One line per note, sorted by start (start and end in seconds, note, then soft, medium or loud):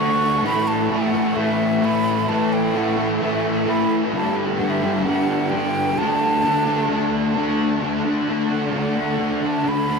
0.00 0.42 D3 medium
0.00 0.44 A3 medium
0.00 0.44 D4 medium
0.00 0.44 C#6 loud
0.42 0.89 A2 loud
0.42 0.91 E3 loud
0.42 0.92 A3 loud
0.42 0.69 B5 loud
0.67 0.93 A5 loud
0.89 1.35 A2 medium
0.89 1.15 E3 medium
0.89 1.12 A3 medium
0.89 1.37 F#5 medium
1.13 1.36 E3 medium
1.13 1.37 A3 medium
1.36 1.80 A2 medium
1.36 1.81 E3 loud
1.36 1.83 A3 loud
1.36 1.86 E5 medium
1.81 2.26 A2 medium
1.81 2.28 E3 medium
1.81 2.29 A3 medium
1.81 2.30 B5 loud
2.27 2.73 A2 medium
2.27 2.74 E3 loud
2.27 2.75 A3 loud
2.27 2.54 A5 loud
2.53 2.78 G5 loud
2.74 3.18 A2 medium
2.74 2.99 E3 medium
2.74 2.95 A3 medium
2.74 3.21 F#5 loud
2.96 3.20 E3 medium
2.96 3.21 A3 medium
3.19 3.65 A2 loud
3.19 3.67 E3 loud
3.19 3.68 A3 loud
3.19 3.64 E5 medium
3.66 4.11 A2 medium
3.66 4.12 E3 medium
3.66 4.12 A3 medium
3.66 3.95 B5 loud
4.12 4.58 G2 medium
4.12 4.59 D3 loud
4.12 4.61 G3 loud
4.16 4.36 A5 medium
4.58 5.03 G2 medium
4.58 4.84 D3 medium
4.58 4.71 F#5 medium
4.62 4.80 G3 medium
4.70 5.04 E5 medium
4.82 5.04 D3 medium
4.82 5.06 G3 medium
5.03 5.50 G2 medium
5.03 5.51 D3 loud
5.03 5.51 F#5 medium
5.07 5.52 G3 loud
5.49 5.95 G2 medium
5.49 5.96 D3 medium
5.49 5.99 G5 loud
5.54 5.97 G3 medium
5.97 6.41 D3 loud
5.97 6.43 A3 loud
5.97 6.45 D4 loud
5.97 7.36 A5 loud
6.43 6.88 D3 medium
6.43 6.68 A3 medium
6.43 6.65 D4 medium
6.66 6.90 A3 medium
6.66 6.91 D4 medium
6.89 7.34 D3 loud
6.89 7.35 A3 loud
6.89 7.37 D4 loud
7.35 7.79 D3 medium
7.35 7.81 A3 medium
7.35 7.81 D4 medium
7.80 8.27 D3 medium
7.80 8.07 A3 loud
7.80 8.03 D4 loud
8.04 8.29 A3 medium
8.04 8.30 D4 medium
8.28 8.72 D3 medium
8.28 8.52 A3 medium
8.28 8.49 D4 medium
8.49 8.74 A3 medium
8.49 8.75 D4 medium
8.49 8.73 F#5 medium
8.72 9.18 D3 loud
8.72 8.99 A3 medium
8.72 8.95 D4 loud
8.76 9.48 F#5 medium
8.96 9.20 A3 medium
8.96 9.21 D4 medium
9.19 9.63 D3 medium
9.19 9.44 A3 medium
9.19 9.40 D4 medium
9.41 9.66 A3 medium
9.41 9.66 D4 medium
9.47 9.70 A5 loud
9.64 9.99 D3 loud
9.64 9.90 A3 loud
9.64 9.86 D4 loud
9.68 9.99 B5 loud
9.87 9.99 A3 medium
9.87 9.99 D4 medium